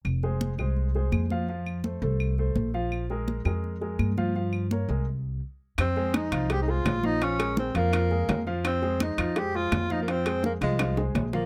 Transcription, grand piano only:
X:1
M:4/4
L:1/8
Q:1/4=168
K:Fm
V:1 name="Grand piano"
z [A,Ac]2 [A,Ac]2 [A,Ac]2 [F,Ff] | [F,Ff]2 [=A,=Ac] [A,Ac]2 [A,Ac]2 [F,Ff]- | [F,Ff] [A,AB]2 [A,AB]2 [A,AB]2 [F,Ff] | [F,Ff]2 [B,Bd] [A,AB] z4 |
z [A,Ac]2 [F,Ff] [A,Ac] [A,Ac]2 [F,Ff] | [F,Ff] [A,AB]2 [F,Ff] [F,Ff] [A,AB]2 [F,Ff]- | [F,Ff] [A,Ac]2 [F,Ff] [A,Ac] [A,Ac]2 [F,Ff] | [F,Ff] [A,Ac]2 [F,Ff] [F,Ff] [A,Ac]2 [F,Ff] |]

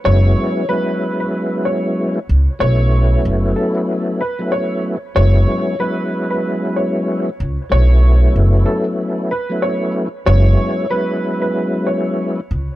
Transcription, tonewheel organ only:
X:1
M:4/4
L:1/16
Q:"Swing 16ths" 1/4=94
K:F#m
V:1 name="Tonewheel organ"
[F,G,B,CE]4 [F,G,B,CE]8- [F,G,B,CE] z3 | [F,A,B,CE]8- [F,A,B,CE]2 z [F,A,B,CE]4 z | [F,G,B,CE]4 [F,G,B,CE]8- [F,G,B,CE] z3 | [F,A,B,CE]8- [F,A,B,CE]2 z [F,A,B,CE]4 z |
[F,G,B,CE]4 [F,G,B,CE]8- [F,G,B,CE] z3 |]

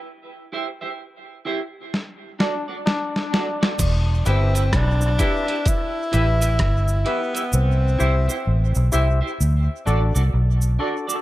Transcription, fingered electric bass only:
X:1
M:4/4
L:1/16
Q:"Swing 16ths" 1/4=64
K:Em
V:1 name="Fingered electric bass" clef=bass
z16 | E,,,2 G,,,2 B,,,2 z4 A,,,2 G,,,2 z2 | C,,2 C,, z A,,, B,,, C,, z D,, z A,,, C,, B,,,2 z2 |]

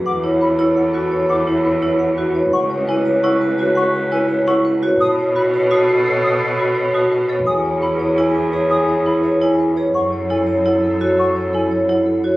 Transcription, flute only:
X:1
M:7/8
L:1/8
Q:1/4=170
K:Emix
V:1 name="Flute"
d' z b z4 | d' z b z4 | [K:C#m] c' z g z c' z2 | c' z g z c' z2 |
d' z b z d' z2 | d' z b z d' z2 | d' z b z4 | d' z b z4 |
c' z g z4 | c' z g z4 |]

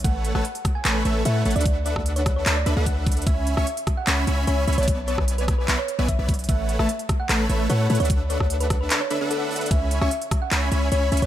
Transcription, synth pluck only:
X:1
M:4/4
L:1/16
Q:1/4=149
K:Bdor
V:1 name="Synth pluck"
f2 z f2 z2 g z4 e2 z d- | d z d2 z c z c z d2 z f z3 | e2 z e2 z2 f z4 c2 z c- | c z c2 z B z B z c2 z e z3 |
e2 z e2 z2 f z4 c2 z c- | c z c2 z B z B z c2 z A z3 | e2 z e2 z2 f z4 c2 z c |]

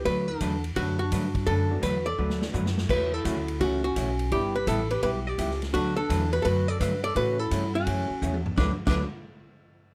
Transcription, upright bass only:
X:1
M:4/4
L:1/16
Q:"Swing" 1/4=169
K:D
V:1 name="Upright bass" clef=bass
D,,4 E,,4 F,,4 G,,4 | F,,4 E,,4 D,,4 F,,4 | E,,4 D,,4 C,,4 B,,,4 | G,,,4 A,,,4 B,,,4 C,,4 |
D,,4 E,,4 F,,4 G,,4 | A,,4 G,,4 F,,2 z2 E,,4 | D,, z2 D,,2 z8 z3 |]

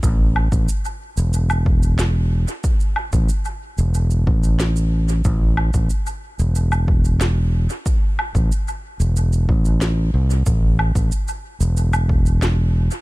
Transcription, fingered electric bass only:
X:1
M:4/4
L:1/16
Q:1/4=92
K:Am
V:1 name="Fingered electric bass" clef=bass
A,,,3 A,,, z3 E,,,8 z | z3 A,,, z3 E,,,3 A,,,6 | A,,,3 A,,, z3 E,,,8 z | z3 A,,, z3 E,,,3 A,,,4 C,,2 |
A,,,3 A,,, z3 E,,,8 z |]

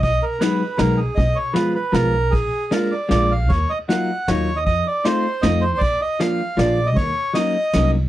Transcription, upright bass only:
X:1
M:3/4
L:1/8
Q:"Swing" 1/4=156
K:Ebm
V:1 name="Upright bass" clef=bass
=B,,, z3 B,,,2 | C,, z3 C,,2 | B,,, z3 B,,,2 | E,, z3 E,,2 |
F,, z3 F,,2 | B,,, z3 B,,,2 | E,, z3 =C,,2 |]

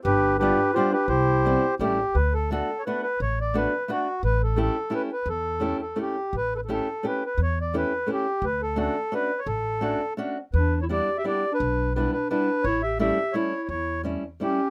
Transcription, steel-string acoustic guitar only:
X:1
M:3/4
L:1/8
Q:1/4=171
K:C
V:1 name="Steel-string acoustic guitar"
z2 [G,B,DF] z [G,B,DF] z | z2 [G,B,CE] z [G,A,^CE] z | [K:D] z2 [A,B,DF] z [A,B,DF] z | z2 [A,B,DF] z [A,B,DF] z |
z2 [A,CEG] z [A,CEG] z | z2 [A,CEG] z [A,CEG] z | z2 [A,CEG] z [A,CEG] z | z2 [A,CEG] z [A,CEG] z |
z2 [A,CDF] z [A,CDF] z | z2 [A,CDF] z [A,CDF] z | z2 [G,B,DE] z [G,B,DE] z | z2 [G,B,DE] z [G,B,DE] z |
z2 [G,A,CE] z [G,A,CE] z | z2 [G,A,CE] z [G,A,CE] z |]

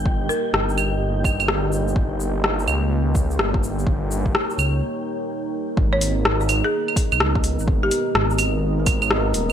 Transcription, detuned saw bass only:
X:1
M:4/4
L:1/16
Q:"Swing 16ths" 1/4=126
K:G#m
V:1 name="Detuned saw bass" clef=bass
=G,,,2 z2 G,,,8- G,,,2 G,,,2 | =G,,,6 C,,6 G,,,4- | =G,,,4 z2 C,,2 z8 | G,,,6- G,,, z4 B,,, C,,3 G,,,- |
G,,,2 z2 G,,,8- G,,,2 D,,,2 |]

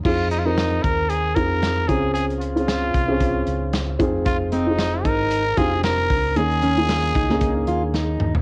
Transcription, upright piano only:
X:1
M:4/4
L:1/16
Q:"Swing 16ths" 1/4=114
K:Fm
V:1 name="Upright piano"
[CEFA]2 z [CEFB]4- [CEFB] z2 [CEFA]4 [CDFA]2- | [CDFA]2 z [CDFA]3 z [CDFA]6 z [CEFA]2- | [CEFA]2 z [CEFA]4- [CEFA] z2 [CEFG]4- [CEFG] z | [B,DEA]2 z [B,DEF]3 z [B,DEA]6 z3 |]
V:2 name="Upright piano" clef=bass
z12 z2 D,2- | D,4 z12 | z16 | E,6 z8 z2 |]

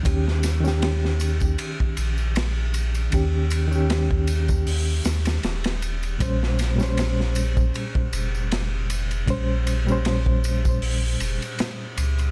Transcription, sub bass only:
X:1
M:4/4
L:1/8
Q:"Swing 16ths" 1/4=78
K:Bbdor
V:1 name="Sub bass" clef=bass
E,,4 z B,,,3 | E,,4 E,, E,, E,,,2 | B,,,4 z F,,,3 | B,,,4 B,,, F,,, z D,, |]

